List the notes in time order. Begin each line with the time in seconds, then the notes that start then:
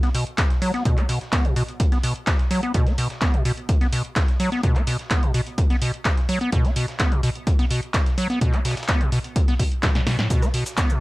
0.03 B3, snare, closed hi-hat
0.15 B2, closed hi-hat, open hi-hat
0.27 closed hi-hat
0.38 kick, snare, clap, closed hi-hat
0.50 snare, closed hi-hat
0.62 F#3, closed hi-hat, open hi-hat
0.74 B3, snare, closed hi-hat
0.85 B2, kick, closed hi-hat
0.97 B3, clap, closed hi-hat
1.09 B2, snare, closed hi-hat, open hi-hat
1.21 snare, closed hi-hat
1.32 B3, kick, snare, clap, closed hi-hat
1.45 B2, closed hi-hat
1.56 B2, closed hi-hat, open hi-hat
1.68 closed hi-hat
1.80 kick, closed hi-hat
1.92 B3, snare, closed hi-hat
2.03 B2, closed hi-hat, open hi-hat
2.16 closed hi-hat
2.27 kick, snare, clap, closed hi-hat
2.39 snare, closed hi-hat
2.51 F#3, closed hi-hat, open hi-hat
2.63 B3, closed hi-hat
2.74 B2, kick, closed hi-hat
2.87 B3, snare, closed hi-hat
2.98 B2, closed hi-hat, open hi-hat
3.10 snare, closed hi-hat
3.21 B3, kick, snare, clap, closed hi-hat
3.34 B2, closed hi-hat
3.45 B2, closed hi-hat, open hi-hat
3.58 closed hi-hat
3.69 kick, closed hi-hat
3.81 B3, snare, closed hi-hat
3.93 B2, closed hi-hat, open hi-hat
4.05 closed hi-hat
4.16 kick, snare, clap, closed hi-hat
4.28 snare, closed hi-hat
4.40 F#3, closed hi-hat, open hi-hat
4.52 B3, snare, closed hi-hat
4.63 B2, kick, closed hi-hat
4.75 B3, clap, closed hi-hat
4.87 B2, snare, closed hi-hat, open hi-hat
4.99 snare, closed hi-hat
5.10 B3, kick, snare, clap, closed hi-hat
5.23 B2, closed hi-hat
5.34 B2, closed hi-hat, open hi-hat
5.47 closed hi-hat
5.58 kick, closed hi-hat
5.70 B3, snare, closed hi-hat
5.82 B2, closed hi-hat, open hi-hat
5.94 closed hi-hat
6.05 kick, snare, clap, closed hi-hat
6.17 snare, closed hi-hat
6.29 F#3, closed hi-hat, open hi-hat
6.41 B3, closed hi-hat
6.52 B2, kick, closed hi-hat
6.65 B3, snare, closed hi-hat
6.76 B2, closed hi-hat, open hi-hat
6.88 snare, closed hi-hat
6.99 B3, kick, snare, clap, closed hi-hat
7.12 B2, closed hi-hat
7.23 B2, closed hi-hat, open hi-hat
7.35 closed hi-hat
7.47 kick, closed hi-hat
7.59 B3, snare, closed hi-hat
7.70 B2, closed hi-hat, open hi-hat
7.83 closed hi-hat
7.94 kick, snare, clap, closed hi-hat
8.06 snare, closed hi-hat
8.18 F#3, closed hi-hat, open hi-hat
8.30 B3, snare, closed hi-hat
8.41 B2, kick, closed hi-hat
8.53 B3, clap, closed hi-hat
8.65 B2, snare, closed hi-hat, open hi-hat
8.71 snare, closed hi-hat
8.77 snare, closed hi-hat
8.83 snare, closed hi-hat
8.88 B3, kick, snare, clap, closed hi-hat
9.01 B2, closed hi-hat
9.12 B2, closed hi-hat, open hi-hat
9.24 closed hi-hat
9.36 kick, closed hi-hat
9.48 B3, snare, closed hi-hat
9.59 B2, kick, closed hi-hat, open hi-hat
9.72 closed hi-hat
9.83 B2, kick, snare, clap, closed hi-hat
9.95 B2, snare, closed hi-hat
10.07 B2, snare, closed hi-hat, open hi-hat
10.19 A2, snare, closed hi-hat
10.30 B2, kick, closed hi-hat, cabasa
10.43 B3, cross-stick, snare, closed hi-hat, cabasa
10.54 B2, closed hi-hat, open hi-hat
10.66 snare, closed hi-hat, cabasa
10.77 B3, kick, cross-stick, snare, clap, closed hi-hat, cabasa
10.90 B2, closed hi-hat, cabasa